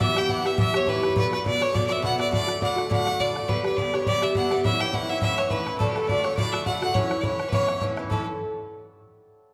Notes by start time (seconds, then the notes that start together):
Already playing: A4 B4 D5 F#5
0.00 G2 E3 B3 G4 E5, bodhran
0.16 E3 B3 G4 G5, bodhran
0.29 G2 E3 B3 G4 F#5, bodhran
0.45 E3 B3 G4 E5, bodhran
0.58 G2 E3 B3 G4 E5, bodhran
0.74 E3 B3 G4 C#5, bodhran
0.86 G2 E3 B3 G4 B4, bodhran
1.02 E3 B3 G4, bodhran
1.10 bodhran
1.16 B2 D3 B3 F#4 B4, bodhran
1.32 D3 B3 F#4 B4, bodhran
1.44 B2 D3 B3 F#4 D5, bodhran
1.60 D3 B3 F#4 C#5, bodhran
1.72 B2 D3 B3 F#4 D5, bodhran
1.87 B3 F#4 D5
1.91 D3 E5
2.02 B2 D3 B3 F#4 F#5, bodhran
2.18 D3 B3 F#4 D5, bodhran
2.27 bodhran
2.31 A2 D3 A3 F#4 D5, bodhran
2.42 D5
2.47 D3 A3 F#4, bodhran
2.52 D5
2.60 A2 D3 A3 F#4 F#5, bodhran
2.76 D3 A3 F#4, bodhran
2.90 A2 D3 A3 F#4 F#5, bodhran
3.06 D3 A3 F#4, bodhran
3.19 A2 D3 A3 F#4 D5, bodhran
3.35 D3 A3 F#4, bodhran
3.43 bodhran
3.48 G2 D3 B3 G4 B4, bodhran
3.64 D3 B3 G4 B4, bodhran
3.77 G2 D3 B3 G4 D5, bodhran
3.94 D3 B3 G4 C#5, bodhran
4.04 G2 D3 B3 C#5 D5, bodhran
4.09 G4
4.22 D3 B3 G4 E5, bodhran
4.35 G2 D3 B3 G4 F#5, bodhran
4.51 D3 B3 G4 D5, bodhran
4.58 bodhran
4.64 A2 E3 C#4 E4 E5, bodhran
4.80 E3 C#4 E4 G5, bodhran
4.93 A2 E3 C#4 E4 F#5, bodhran
5.09 E3 C#4 E4 E5
5.22 A2 E3 C#4 E4 E5, bodhran
5.38 E3 C#4 E4 C#5, bodhran
5.50 A2 E3 C#4 E4 B4, bodhran
5.67 E3 C#4 E4 B4, bodhran
5.74 bodhran
5.79 A2 D3 A3 F#4 A4, bodhran
5.90 G4
5.95 D3 A3 F#4 A4, bodhran
6.08 A2 D3 A3 F#4 D5, bodhran
6.24 D3 A3 F#4 C#5, bodhran
6.37 A2 D3 A3 F#4 D5, bodhran
6.52 D3 A3 F#4 E5, bodhran
6.66 A2 D3 A3 F#4 F#5, bodhran
6.82 D3 A3 F#4 F#5, bodhran
6.89 bodhran
6.94 A2 E3 C#4 E4 C#5, bodhran
7.10 E3 C#4 E4, bodhran
7.20 A2 E3 C#5 D5, bodhran
7.24 C#4 E4
7.39 E3 C#4 E4, bodhran
7.49 A2 B4 C#5, bodhran
7.53 E3 C#4 E4 C#5
7.68 E3 C#4 E4, bodhran
7.81 A2 E3 C#4 E4, bodhran
7.97 E3 C#4 E4, bodhran
8.04 bodhran
8.10 A2 E3 C#4 E4 A4, bodhran